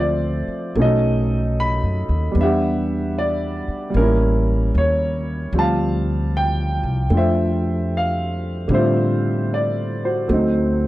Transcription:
0.00 0.44 D2 medium
0.00 0.74 F3 soft
0.00 0.75 A3 soft
0.00 0.78 C4 soft
0.00 0.75 F4 medium
0.00 0.78 C5 medium
0.00 0.80 D5 medium
0.00 0.80 E5 medium
0.48 muted upright bass stroke soft
0.75 1.78 B1 medium
0.75 2.35 F#3 medium
0.75 2.36 A3 soft
0.75 2.37 C#4 soft
0.80 2.38 D#4 medium
0.80 2.35 A4 medium
0.80 1.61 D#5 medium
1.60 2.20 B5 medium
1.83 2.08 F#2 medium
2.09 2.34 D#2 medium
2.32 3.63 E2 medium
2.32 3.88 G3 medium
2.32 3.94 B3 soft
2.39 3.96 D4 soft
2.39 3.94 G4 medium
2.39 3.14 E5 medium
2.39 3.98 F#5 medium
3.18 3.99 D5 medium
3.68 muted upright bass stroke soft
3.90 5.51 G3 medium
3.90 5.53 A#3 medium
3.94 4.70 A1 medium
3.94 5.55 C#4 medium
3.94 4.78 A#4 medium
4.01 5.57 E4 medium
4.75 5.50 D#2 medium
4.75 5.38 C#5 medium
5.53 6.79 D2 medium
5.53 8.70 F3 soft
5.53 8.68 G3 soft
5.53 8.70 C4 soft
5.53 8.70 G4 soft
5.59 7.10 F5 medium
5.59 6.37 A5 medium
6.37 7.15 G5 medium
6.83 7.09 C2 medium
7.10 8.65 F2 medium
7.10 8.69 A3 soft
7.10 8.70 D4 soft
7.10 8.71 F4 soft
7.17 8.69 C5 medium
7.17 7.96 E5 medium
7.97 8.56 F5 medium
8.68 10.25 A2 medium
8.68 10.28 D3 medium
8.68 10.29 G3 medium
8.68 10.30 C4 medium
8.73 10.28 F4 medium
8.73 9.54 C5 medium
8.73 10.31 E5 medium
9.54 10.06 D5 medium
10.05 10.87 F#4 soft
10.05 10.87 C5 medium
10.28 10.87 D2 medium
10.28 10.87 F#3 medium
10.28 10.87 A3 medium
10.28 10.87 C4 soft
10.33 10.87 D#4 medium

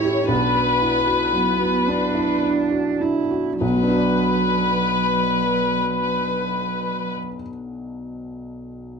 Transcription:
0.00 0.26 A1 medium
0.00 0.32 A3 medium
0.00 0.29 E4 medium
0.00 0.32 E4 medium
0.00 0.32 F#4 soft
0.00 0.04 G4 soft
0.00 0.29 G4 soft
0.00 0.30 C#5 medium
0.28 3.57 B1 soft
0.28 1.21 D4 soft
0.28 2.41 B4 medium
0.55 0.97 F#4 soft
0.81 1.07 E4 soft
1.07 1.50 F#4 soft
1.33 1.77 F#3 soft
1.33 1.90 B3 soft
1.60 2.04 F#4 soft
1.87 2.32 D4 soft
1.87 3.03 D4 medium
2.15 2.44 E4 soft
2.43 2.90 D4 soft
2.72 3.19 F#4 soft
3.00 3.49 D4 soft
3.00 3.61 E4 soft
3.31 3.61 F#4 soft
3.61 7.12 B1 soft
3.61 7.12 F#3 soft
3.61 7.12 B4 medium
3.69 7.19 B2 soft
3.76 7.26 F#3 soft
3.83 7.33 D4 soft
3.89 7.40 F#4 soft
3.96 7.47 D5 soft

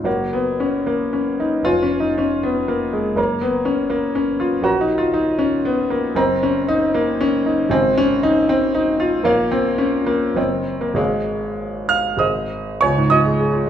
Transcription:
0.03 1.61 F#1 soft
0.03 0.34 A#3 medium
0.03 1.61 F#4 soft
0.03 1.62 C#5 soft
0.03 1.62 F#5 soft
0.33 0.61 B3 medium
0.60 0.88 C#4 medium
0.87 1.14 A#3 medium
1.13 1.40 C#4 medium
1.40 1.66 D#4 medium
1.63 3.12 F1 soft
1.63 1.83 F4 medium
1.63 3.13 B4 soft
1.63 3.13 C#5 soft
1.63 3.14 G#5 soft
1.82 2.00 C#4 medium
2.00 2.18 D#4 medium
2.18 2.44 C#4 medium
2.43 2.69 B3 medium
2.68 2.93 A#3 medium
2.93 3.18 G#3 medium
3.15 4.61 F#1 soft
3.15 3.42 A#3 medium
3.15 4.61 A#4 soft
3.15 4.62 C#5 soft
3.15 4.62 A#5 soft
3.41 3.66 B3 medium
3.65 3.91 C#4 medium
3.90 4.15 A#3 medium
4.15 4.41 C#4 medium
4.40 4.66 F4 medium
4.62 6.12 A#1 medium
4.62 4.82 F#4 medium
4.62 6.12 A#4 soft
4.62 6.12 C#5 soft
4.62 6.13 A#5 soft
4.81 4.99 D#4 medium
4.98 5.15 F4 medium
5.14 5.40 D#4 medium
5.39 5.65 C#4 medium
5.65 5.92 B3 medium
5.90 6.17 A#3 medium
6.15 7.66 F#1 medium
6.15 6.43 C4 medium
6.15 7.67 A#4 soft
6.15 7.67 D#5 soft
6.15 7.67 A#5 soft
6.43 6.69 C#4 medium
6.69 6.95 D#4 medium
6.94 7.20 A#3 medium
7.21 7.46 C#4 medium
7.46 7.72 D#4 medium
7.69 9.22 G#1 medium
7.69 7.97 C4 medium
7.69 9.22 D#5 medium
7.69 9.23 G#5 medium
7.98 8.24 C#4 loud
8.23 8.50 D#4 medium
8.49 8.75 C4 medium
8.75 9.01 D#4 medium
9.00 9.27 F4 medium
9.23 10.32 A#1 medium
9.23 9.53 A#3 medium
9.23 10.33 A#4 medium
9.23 10.33 C#5 medium
9.23 10.33 F5 medium
9.52 9.80 C4 medium
9.78 10.07 C#4 medium
10.06 10.37 A#3 medium
10.34 10.95 F#1 medium
10.34 10.82 C4 medium
10.34 10.96 A#4 soft
10.34 10.94 C#5 soft
10.34 10.96 D#5 soft
10.81 10.98 A#3 medium
10.94 12.15 G#1 medium
10.94 11.89 G#3 medium
10.94 12.15 G#4 soft
10.94 12.16 C#5 soft
10.94 11.88 F5 soft
11.89 12.18 F5 medium
11.89 12.20 F6 medium
12.17 12.78 G#1 soft
12.17 12.79 G#4 soft
12.17 12.79 C5 soft
12.17 12.78 D#5 medium
12.17 12.81 D#6 medium
12.81 13.70 C#2 medium
12.81 13.09 C#5 medium
12.81 13.09 G#5 medium
12.81 13.10 C#6 medium
12.98 13.20 G#2 medium
13.10 13.33 F4 medium
13.10 13.70 D#5 medium
13.10 13.70 D#6 medium
13.25 13.47 G#3 soft
13.40 13.61 G#4 medium
13.53 13.70 F4 medium

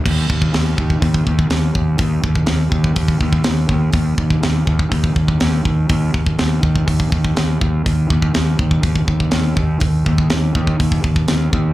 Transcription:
0.06 0.26 D#2 loud
0.06 kick loud
0.06 crash loud
0.30 0.51 D#2 medium
0.30 kick medium
0.42 kick medium
0.54 0.76 D#2 medium
0.54 snare loud
0.54 open hi-hat medium
0.78 0.99 D#2 medium
0.78 kick medium
0.90 kick medium
1.02 1.23 D#2 medium
1.02 kick medium
1.02 open hi-hat medium
1.14 kick medium
1.27 1.48 D#2 medium
1.27 kick medium
1.39 kick medium
1.50 1.72 D#2 medium
1.50 snare loud
1.50 open hi-hat medium
1.75 1.96 D#2 medium
1.75 kick medium
1.98 2.21 D#2 medium
1.98 kick loud
1.98 open hi-hat medium
2.24 2.45 D#2 medium
2.24 kick medium
2.35 kick medium
2.46 2.70 D#2 medium
2.46 snare loud
2.46 open hi-hat medium
2.72 2.93 D#2 medium
2.72 kick medium
2.84 kick medium
2.96 3.18 D#2 medium
2.96 kick loud
2.96 open hi-hat medium
3.08 kick medium
3.21 3.42 D#2 medium
3.21 kick medium
3.33 kick medium
3.44 3.68 D#2 loud
3.44 snare loud
3.44 open hi-hat medium
3.69 3.91 D#2 medium
3.69 kick medium
3.93 4.15 D#2 medium
3.93 kick loud
3.93 open hi-hat medium
4.17 4.39 D#2 medium
4.17 kick medium
4.30 kick medium
4.43 4.65 D#2 medium
4.43 snare loud
4.43 open hi-hat medium
4.67 4.89 D#2 medium
4.67 kick medium
4.79 kick medium
4.92 5.13 D#2 medium
4.92 kick medium
4.92 open hi-hat medium
5.04 kick medium
5.16 5.37 D#2 medium
5.16 kick medium
5.28 kick medium
5.40 5.63 D#2 medium
5.40 snare loud
5.40 open hi-hat medium
5.65 5.86 D#2 medium
5.65 kick medium
5.89 6.11 D#2 loud
5.89 kick loud
5.89 open hi-hat medium
6.14 6.35 D#2 medium
6.14 kick medium
6.26 kick medium
6.39 6.61 D#2 medium
6.39 snare loud
6.39 open hi-hat medium
6.63 6.84 D#2 medium
6.63 kick medium
6.76 kick medium
6.88 7.09 D#2 loud
6.88 kick medium
6.88 open hi-hat medium
7.00 kick medium
7.12 7.33 D#2 medium
7.12 kick medium
7.25 kick medium
7.37 7.59 D#2 medium
7.37 snare loud
7.37 open hi-hat medium
7.61 7.82 D#2 medium
7.61 kick medium
7.86 8.07 D#2 loud
7.86 kick loud
7.86 open hi-hat medium
8.10 8.31 D#2 medium
8.10 kick medium
8.22 kick medium
8.34 8.57 D#2 medium
8.34 snare loud
8.34 open hi-hat medium
8.59 8.80 D#2 medium
8.59 kick medium
8.71 kick medium
8.83 9.05 D#2 medium
8.83 kick medium
8.83 open hi-hat medium
8.96 kick medium
9.07 9.29 D#2 medium
9.07 kick medium
9.20 kick medium
9.31 9.54 D#2 medium
9.31 snare loud
9.31 open hi-hat medium
9.57 9.78 D#2 medium
9.57 kick medium
9.80 10.03 D#2 medium
9.80 kick loud
9.80 open hi-hat medium
10.06 10.28 D#2 medium
10.06 kick medium
10.18 kick medium
10.30 10.53 D#2 medium
10.30 snare loud
10.30 open hi-hat medium
10.55 10.76 D#2 medium
10.55 kick medium
10.67 kick medium
10.80 11.01 D#2 medium
10.80 kick medium
10.80 open hi-hat medium
10.92 kick medium
11.04 11.25 D#2 medium
11.04 kick medium
11.16 kick medium
11.28 11.51 D#2 medium
11.28 snare loud
11.28 open hi-hat medium
11.53 11.73 D#2 medium
11.53 kick medium

